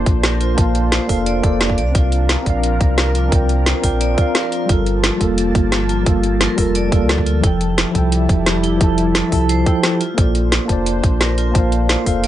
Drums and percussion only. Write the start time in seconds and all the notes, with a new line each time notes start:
0.06 kick, closed hi-hat
0.23 snare, closed hi-hat
0.41 closed hi-hat
0.58 kick, closed hi-hat
0.75 closed hi-hat
0.92 snare, closed hi-hat
1.09 kick, open hi-hat
1.26 closed hi-hat
1.43 kick, closed hi-hat
1.61 snare, closed hi-hat
1.70 kick
1.78 closed hi-hat
1.95 kick, closed hi-hat
2.12 closed hi-hat
2.29 snare, closed hi-hat
2.46 kick, closed hi-hat
2.63 closed hi-hat
2.81 kick, closed hi-hat
2.98 snare, closed hi-hat
3.15 closed hi-hat
3.32 kick, closed hi-hat
3.49 closed hi-hat
3.66 snare, closed hi-hat
3.84 kick, open hi-hat
4.01 closed hi-hat
4.18 kick, closed hi-hat
4.35 snare, closed hi-hat
4.52 closed hi-hat
4.69 kick, closed hi-hat
4.86 closed hi-hat
5.04 snare, closed hi-hat
5.21 kick, closed hi-hat
5.38 closed hi-hat
5.55 kick, closed hi-hat
5.72 snare, closed hi-hat
5.89 closed hi-hat
6.06 kick, closed hi-hat
6.23 closed hi-hat
6.41 snare, closed hi-hat
6.58 kick, open hi-hat
6.75 closed hi-hat
6.92 kick, closed hi-hat
7.09 snare, closed hi-hat
7.18 kick
7.26 closed hi-hat
7.44 kick, closed hi-hat
7.61 closed hi-hat
7.78 snare, closed hi-hat
7.95 kick, closed hi-hat
8.12 closed hi-hat
8.29 kick, closed hi-hat
8.46 snare, closed hi-hat
8.64 closed hi-hat
8.81 kick, closed hi-hat
8.98 closed hi-hat
9.15 snare, closed hi-hat
9.32 kick, open hi-hat
9.49 closed hi-hat
9.66 kick, closed hi-hat
9.83 snare, closed hi-hat
10.01 closed hi-hat
10.18 kick, closed hi-hat
10.35 closed hi-hat
10.52 snare, closed hi-hat
10.69 kick, closed hi-hat
10.86 closed hi-hat
11.04 kick, closed hi-hat
11.21 snare, closed hi-hat
11.38 closed hi-hat
11.55 kick, closed hi-hat
11.72 closed hi-hat
11.89 snare, closed hi-hat
12.06 kick, open hi-hat
12.24 closed hi-hat